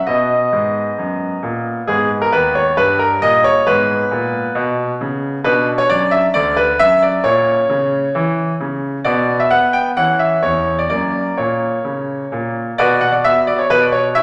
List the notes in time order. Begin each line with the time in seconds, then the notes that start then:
0.07 B2 B3 D#5
0.53 G#2
0.98 F#2
1.43 A#2
1.87 G#2 B3 G#4
2.22 A#4
2.32 D#2 B4
2.55 C#5
2.77 G2 G3 B4
2.99 A#4
3.22 A#2 D#5
3.44 C#5
3.67 G#2 B3 B4
4.11 A#2
4.55 B2
5.01 C#3
5.44 B2 D4 B4
5.78 C#5
5.90 F#2 D5
6.11 E5
6.34 D2 D5
6.57 B4
6.79 F#2 E5
7.02 D5
7.24 A#2 C#4 C#5
7.70 C#3
8.15 E3
8.60 C#3
9.04 B2 B3 D5
9.40 E5
9.50 B3 F#5
9.73 G5
9.97 E3 C#4 F#5
10.19 E5
10.43 E2 C#5
10.79 D5
10.90 F#2 A#3 D5
11.37 A#2 C#5
11.85 C#3
12.32 A#2
12.78 B2 F#4 B4 D5
13.01 F#5
13.12 D5
13.24 B3 F#4 E5
13.47 D5
13.59 C#5
13.70 B2 B4
13.82 D5
13.92 C#5
14.15 C#4 E4 E5